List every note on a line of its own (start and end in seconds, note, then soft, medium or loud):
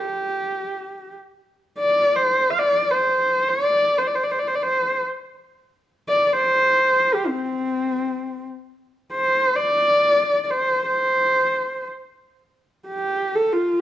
0.00 1.15 G4 medium
1.79 2.18 D5 medium
2.16 2.52 C5 medium
2.50 2.60 F5 medium
2.59 2.92 D5 medium
2.91 3.50 C5 medium
3.48 3.99 D5 medium
3.98 4.09 C5 medium
4.07 4.16 D5 medium
4.15 4.24 C5 medium
4.23 4.33 D5 medium
4.31 4.40 C5 medium
4.39 4.49 D5 medium
4.47 4.56 C5 medium
4.55 4.64 D5 medium
4.63 5.03 C5 medium
6.08 6.27 D5 medium
6.27 6.35 D5 medium
6.33 7.15 C5 medium
7.14 7.28 G4 medium
7.27 8.45 C4 medium
9.12 9.57 C5 medium
9.55 10.44 D5 loud
10.44 10.52 D5 medium
10.51 10.84 C5 medium
10.86 11.87 C5 medium
12.87 13.37 G4 medium
13.35 13.54 A4 medium
13.52 13.81 F4 medium